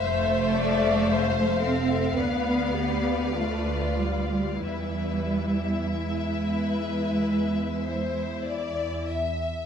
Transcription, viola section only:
X:1
M:4/4
L:1/8
Q:1/4=48
K:Ephr
V:1 name="Viola section"
c d c A B G F2 | E6- E z |]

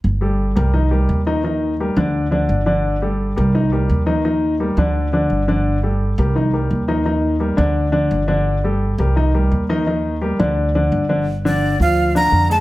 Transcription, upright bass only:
X:1
M:4/4
L:1/8
Q:1/4=171
K:Gm
V:1 name="Upright bass" clef=bass
G,,,3 C,,3 E,,2- | E,,3 D,,3 G,,,2- | G,,,3 C,,3 E,,2- | E,,3 D,,3 G,,,2- |
G,,,3 C,,3 E,,2- | E,,3 D,,3 G,,,2- | G,,,3 C,,3 E,,2- | E,,3 D,,3 G,,,2- |
G,,,3 D,,3 F,,2 |]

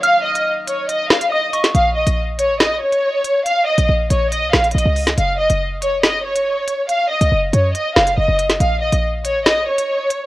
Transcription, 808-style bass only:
X:1
M:4/4
L:1/16
Q:1/4=140
K:Bbm
V:1 name="808-style bass" clef=bass
z16 | B,,,3 B,,,4 =A,,,3/2 B,,,3/2 z6 | z3 B,,, B,,,2 B,,,3 C,, B,,,2 B,,, D,,3 | G,,,3 G,,,12 z |
z3 D,, G,,,2 G,,2 z2 G,,,2 G,,, G,,,3 | B,,,3 B,,,4 =A,,,3/2 B,,,3/2 z6 |]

